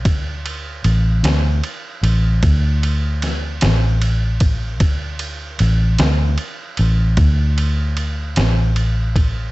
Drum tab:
RD |xxxxxxxxxxxx|xxxxxxxxxxxx|
SD |---o----oo--|---o-----o--|
BD |o-----o----o|o-----o----o|